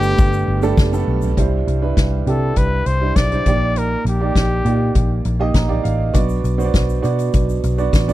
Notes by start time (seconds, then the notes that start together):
Already playing: G1 G2 D3 G3 A3 B3 D4 G4 A4 B4
0.03 shaker
0.18 G1, kick, ride, shaker
0.33 shaker
0.48 G1, ride
0.62 G3 A3 B3 D4 A4, shaker
0.77 F#1, kick, snare, ride, shaker
0.93 G3 A3 B3 D4 A4, shaker
1.07 B1, ride
1.22 floor tom, ride, shaker
1.37 C2 G2 G3 D4 E4 C5, kick, closed hi-hat
1.67 C2, closed hi-hat
1.82 G3 D4 E4 B4
1.97 C2, kick, snare, closed hi-hat
2.26 C3 G3 D4 E4 G4 A4, closed hi-hat, floor tom
2.56 C2 B4, kick, closed hi-hat
2.86 C2 C5, closed hi-hat
3.01 G3 D4 E4 C5
3.16 B1 D5, kick, snare, closed hi-hat
3.32 G3 D4 E4 C5, closed hi-hat, floor tom
3.46 A#1 A#2 A#3 D#4 G4 D5, kick, closed hi-hat
3.76 A#4, closed hi-hat
4.05 A#1 G4, closed hi-hat
4.20 A#3 D#4 G4 D5
4.35 A#1, kick, snare, closed hi-hat
4.65 A#2 A#3 D#4 G4 D5, closed hi-hat, floor tom
4.95 A#1, kick, closed hi-hat
5.25 A#1, closed hi-hat
5.40 A#3 D#4 G4 D#5
5.54 A#1 A#5, kick, snare, closed hi-hat
5.68 A#3 D#4 G4 D5, floor tom
5.84 A1 F5, closed hi-hat
6.13 B1 B3 D4 F#4 D5, kick, closed hi-hat, shaker
6.29 shaker
6.44 B1, closed hi-hat, shaker
6.58 B3 D4 F#4 C5, shaker
6.64 D5
6.74 B1, kick, snare, closed hi-hat, shaker
6.90 shaker
7.02 B2 B3 D4 F#4 D5, closed hi-hat, shaker
7.19 closed hi-hat, shaker
7.34 B1, kick, closed hi-hat, shaker
7.49 shaker
7.63 B1, closed hi-hat, shaker
7.78 B3 D4 F#4 D5, shaker
7.93 A1, kick, snare, closed hi-hat, shaker
8.08 B3 D4 F#4 D5, closed hi-hat, floor tom, shaker